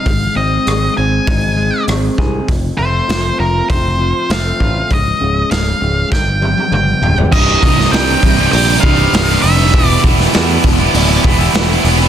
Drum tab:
CC |----------------|----------------|----------------|x---------------|
HH |o---o---o---o---|o---o---o---o---|o---o-----------|--o-o-o-o-o-o-o-|
SD |----r-------r---|----o-------o---|----o---o-------|---oo-------oo--|
T1 |----------------|----------------|----------oo----|----------------|
T2 |----------------|----------------|------------o---|----------------|
FT |----------------|----------------|--------------oo|----------------|
BD |o-------o-----o-|o-------o-----o-|o-------o-------|o-o---o---o-----|

CC |----------------|
HH |o-o-o-o-o-o-o-o-|
SD |---oo-------o---|
T1 |----------------|
T2 |----------------|
FT |----------------|
BD |o-o---o---o-----|